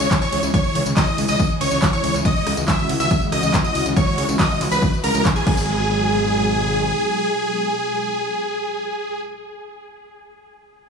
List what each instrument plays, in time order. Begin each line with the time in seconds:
Already playing: analog synth pad C#3 E3 G#3 E4 G#4
0.00 analog synth bass C#2, closed hi-hat
0.11 kick, clap, closed hi-hat, tambourine
0.21 supersaw synth C#5, synth pluck C#6, tambourine
0.32 analog synth bass C#2, open hi-hat, ride
0.43 analog synth bass C#2, closed hi-hat, tambourine
0.54 supersaw synth C#5, synth pluck C#6, kick, closed hi-hat, tambourine
0.64 tambourine
0.75 analog synth bass C#2, open hi-hat, ride
0.86 analog synth bass C#2, closed hi-hat, tambourine
0.97 supersaw synth D#5, synth pluck D#6, kick, clap, closed hi-hat, tambourine
1.07 tambourine
1.18 analog synth bass C#2, open hi-hat, ride
1.28 analog synth bass C#2, supersaw synth D#5, synth pluck D#6, closed hi-hat, tambourine
1.40 kick, closed hi-hat, tambourine
1.51 tambourine
1.61 analog synth bass C#2, supersaw synth C#5, synth pluck C#6, open hi-hat, ride
1.71 analog synth bass C#2, closed hi-hat, tambourine
1.82 kick, clap, closed hi-hat, tambourine
1.93 supersaw synth C#5, synth pluck C#6, tambourine
2.04 analog synth bass C#2, open hi-hat, ride
2.14 analog synth bass C#2, closed hi-hat, tambourine
2.25 analog synth pad F#4, supersaw synth D#5, synth pluck D#6, kick, closed hi-hat, tambourine
2.36 tambourine
2.47 analog synth bass C#2, cross-stick, open hi-hat, ride
2.57 analog synth bass C#2, closed hi-hat, tambourine
2.68 supersaw synth E5, synth pluck E6, kick, clap, closed hi-hat, tambourine
2.79 tambourine
2.89 analog synth bass C#2, open hi-hat, ride
3.00 analog synth bass C#2, supersaw synth E5, synth pluck E6, closed hi-hat, tambourine
3.11 kick, closed hi-hat, tambourine
3.21 tambourine
3.32 analog synth bass C#2, supersaw synth D#5, synth pluck D#6, cross-stick, open hi-hat, ride
3.43 analog synth bass C#2, closed hi-hat, tambourine
3.54 kick, clap, closed hi-hat, tambourine
3.64 supersaw synth D#5, synth pluck D#6, tambourine
3.75 analog synth bass C#2, open hi-hat, ride
3.86 analog synth bass C#2, closed hi-hat, tambourine
3.96 supersaw synth C#5, synth pluck C#6, kick, closed hi-hat, tambourine
4.07 tambourine
4.18 analog synth bass C#2, open hi-hat, ride
4.29 analog synth bass C#2, closed hi-hat, tambourine
4.39 supersaw synth D#5, synth pluck D#6, kick, clap, closed hi-hat, tambourine
4.51 tambourine
4.61 analog synth bass C#2, clap, open hi-hat, ride
4.71 analog synth bass C#2, supersaw synth B4, synth pluck B5, closed hi-hat, tambourine
4.82 kick, closed hi-hat, tambourine
4.93 tambourine
5.04 analog synth bass C#2, supersaw synth A#4, synth pluck A#5, open hi-hat, ride
5.15 analog synth bass C#2, closed hi-hat, tambourine
5.25 kick, clap, closed hi-hat, tambourine
5.36 supersaw synth G#4, synth pluck G#5, tambourine
5.47 analog synth bass G#1, analog synth pad B2 F#3 G#3 D#4 G#4, supersaw synth G#4, synth pluck G#5, kick, crash
5.57 tambourine